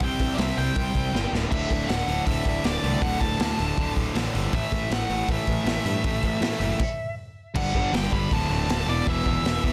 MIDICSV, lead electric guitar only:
0, 0, Header, 1, 2, 480
1, 0, Start_track
1, 0, Tempo, 377596
1, 4, Time_signature, 4, 2, 24, 8
1, 12366, End_track
2, 0, Start_track
2, 0, Title_t, "Lead electric guitar"
2, 0, Program_c, 0, 29
2, 31, Note_on_c, 0, 79, 103
2, 434, Note_on_c, 0, 74, 66
2, 447, Note_off_c, 0, 79, 0
2, 468, Note_on_c, 0, 76, 90
2, 487, Note_off_c, 0, 74, 0
2, 728, Note_off_c, 0, 76, 0
2, 728, Note_on_c, 0, 79, 95
2, 1681, Note_off_c, 0, 79, 0
2, 1916, Note_on_c, 0, 76, 100
2, 2393, Note_off_c, 0, 76, 0
2, 2398, Note_on_c, 0, 78, 93
2, 2865, Note_off_c, 0, 78, 0
2, 2870, Note_on_c, 0, 76, 89
2, 3366, Note_off_c, 0, 76, 0
2, 3366, Note_on_c, 0, 74, 94
2, 3834, Note_on_c, 0, 78, 112
2, 3854, Note_off_c, 0, 74, 0
2, 4068, Note_on_c, 0, 81, 101
2, 4081, Note_off_c, 0, 78, 0
2, 4980, Note_off_c, 0, 81, 0
2, 5781, Note_on_c, 0, 76, 108
2, 6262, Note_off_c, 0, 76, 0
2, 6268, Note_on_c, 0, 78, 113
2, 6738, Note_off_c, 0, 78, 0
2, 6743, Note_on_c, 0, 76, 84
2, 9083, Note_off_c, 0, 76, 0
2, 9617, Note_on_c, 0, 78, 107
2, 10093, Note_off_c, 0, 78, 0
2, 10098, Note_on_c, 0, 79, 111
2, 10329, Note_on_c, 0, 83, 105
2, 10337, Note_off_c, 0, 79, 0
2, 10587, Note_off_c, 0, 83, 0
2, 10587, Note_on_c, 0, 81, 94
2, 11295, Note_off_c, 0, 81, 0
2, 11302, Note_on_c, 0, 74, 92
2, 11537, Note_off_c, 0, 74, 0
2, 11537, Note_on_c, 0, 76, 114
2, 12247, Note_off_c, 0, 76, 0
2, 12262, Note_on_c, 0, 76, 92
2, 12366, Note_off_c, 0, 76, 0
2, 12366, End_track
0, 0, End_of_file